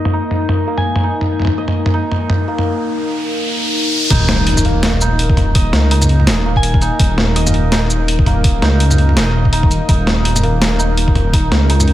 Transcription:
Already playing: santur A#3 D#4 D#5, analog synth pad A#3 D#4 A#4
0.05 mid tom
0.13 santur D#4
0.31 mid tom
0.49 mid tom
0.67 santur A#3
0.78 synth bell G#5, mid tom
0.96 mid tom
1.03 santur D#4
1.21 mid tom, riser
1.40 mid tom
1.42 mid tom
1.45 mid tom
1.47 mid tom
1.58 santur D#5
1.68 mid tom
1.86 mid tom
1.94 santur D#4
2.12 mid tom
2.30 mid tom
2.48 santur A#3
2.58 mid tom
4.10 detuned saw bass D#1, santur D#4, kick, closed hi-hat, crash, impact
4.29 snare, closed hi-hat
4.47 closed hi-hat
4.57 mid tom, shaker
4.65 santur A#3, closed hi-hat
4.83 snare, closed hi-hat
5.01 santur D#4, shaker
5.19 closed hi-hat
5.30 kick
5.37 kick, closed hi-hat, mid tom
5.55 santur D#5, kick, closed hi-hat
5.73 detuned saw bass C#2, snare, closed hi-hat
5.91 santur D#4, closed hi-hat
6.02 mid tom, shaker
6.09 closed hi-hat
6.20 mid tom
6.27 detuned saw bass D#1, snare, closed hi-hat
6.46 santur A#3
6.56 synth bell G#5, kick
6.63 closed hi-hat
6.74 kick
6.82 santur D#4, closed hi-hat, shaker
7.00 detuned saw bass D#1, kick, closed hi-hat
7.18 snare
7.36 santur D#5, closed hi-hat
7.47 mid tom, shaker
7.54 closed hi-hat
7.72 santur D#4, snare, closed hi-hat
7.90 shaker
8.08 closed hi-hat
8.19 kick
8.26 santur A#3, kick, closed hi-hat, mid tom
8.44 kick, closed hi-hat
8.62 detuned saw bass C#2, santur D#4, snare, closed hi-hat
8.80 closed hi-hat
8.91 mid tom, shaker
8.98 closed hi-hat
9.09 mid tom
9.16 detuned saw bass D#1, santur D#5, snare, closed hi-hat
9.45 kick
9.53 santur D#4, closed hi-hat
9.63 kick
9.71 closed hi-hat, shaker
9.89 detuned saw bass D#1, santur D#4, kick, closed hi-hat
10.07 snare, closed hi-hat
10.25 closed hi-hat
10.36 mid tom, shaker
10.43 santur A#3, closed hi-hat
10.62 snare, closed hi-hat
10.79 santur D#4, shaker
10.97 closed hi-hat
11.08 kick
11.15 kick, closed hi-hat, mid tom
11.33 santur D#4, kick, closed hi-hat
11.51 detuned saw bass C#2, snare, closed hi-hat
11.70 santur D#4, closed hi-hat
11.80 mid tom, shaker
11.88 closed hi-hat

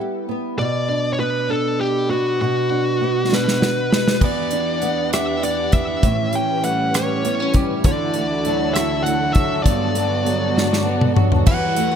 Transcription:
Already playing: nylon-string guitar G3 B3 E4
0.00 nylon-string guitar G4
0.29 nylon-string guitar B3
0.58 nylon-string guitar B2, lead electric guitar D5
0.88 nylon-string guitar D4
1.13 lead electric guitar C#5
1.18 nylon-string guitar B3, lead electric guitar B4
1.49 nylon-string guitar D4, lead electric guitar A4
1.81 lead electric guitar G4
2.10 nylon-string guitar B3, lead electric guitar F#4
2.41 nylon-string guitar B2, lead electric guitar F#4
2.70 nylon-string guitar D4
3.01 nylon-string guitar B3
3.30 nylon-string guitar D4, snare
3.34 lead electric guitar B4
3.48 snare
3.60 nylon-string guitar F#4, snare
3.91 nylon-string guitar B3, snare
4.08 snare
4.21 string section E2 E3 D4 G4 F#5, nylon-string guitar E3, clean electric guitar B3, lead electric guitar D5, kick, crash
4.51 nylon-string guitar D4, clean electric guitar D4, closed hi-hat
4.82 clean electric guitar B3, nylon-string guitar B3, closed hi-hat
5.13 clean electric guitar G4, nylon-string guitar G4, lead electric guitar E5, cross-stick, closed hi-hat
5.43 nylon-string guitar D4, clean electric guitar D4, lead electric guitar D5, closed hi-hat
5.72 nylon-string guitar B3, clean electric guitar G4, lead electric guitar E5, kick, closed hi-hat
6.02 string section A2 C#4 B4, nylon-string guitar A2, clean electric guitar E3, kick, closed hi-hat
6.33 nylon-string guitar C#4, clean electric guitar C#4, lead electric guitar G5, closed hi-hat
6.64 nylon-string guitar G3, clean electric guitar A3, lead electric guitar F#5, closed hi-hat
6.93 nylon-string guitar E4, clean electric guitar G4, lead electric guitar C#5, cross-stick, closed hi-hat
7.25 nylon-string guitar B3, clean electric guitar B3, closed hi-hat
7.40 nylon-string guitar C#4, clean electric guitar C#4
7.54 nylon-string guitar G3, clean electric guitar G4, kick, closed hi-hat
7.84 string section D2 D3 E4 F#4 A4, nylon-string guitar D3, clean electric guitar E3, lead electric guitar D5, kick, closed hi-hat
8.14 nylon-string guitar A3, clean electric guitar D4, closed hi-hat
8.45 nylon-string guitar F#3, clean electric guitar A3, closed hi-hat
8.74 nylon-string guitar E4, clean electric guitar F#4, lead electric guitar E5, cross-stick, closed hi-hat
9.03 nylon-string guitar A3, clean electric guitar D4, lead electric guitar F#5, closed hi-hat
9.33 nylon-string guitar F#3, clean electric guitar F#4, lead electric guitar E5, kick, closed hi-hat
9.63 nylon-string guitar G2, string section G2 B3 F#4, clean electric guitar B3, lead electric guitar D5, kick, closed hi-hat
9.95 nylon-string guitar B3, clean electric guitar D4, closed hi-hat
10.25 nylon-string guitar F#3, clean electric guitar B3, closed hi-hat
10.56 nylon-string guitar D4, clean electric guitar F#4, snare
10.73 snare
10.86 nylon-string guitar B3, clean electric guitar D4
11.01 mid tom
11.16 nylon-string guitar F#3, clean electric guitar F#4, mid tom
11.32 floor tom
11.46 string section E2 E3 G3 F#4 B4, nylon-string guitar E3, lead electric guitar F#5, kick, crash
11.76 nylon-string guitar A3, closed hi-hat
11.91 nylon-string guitar B3

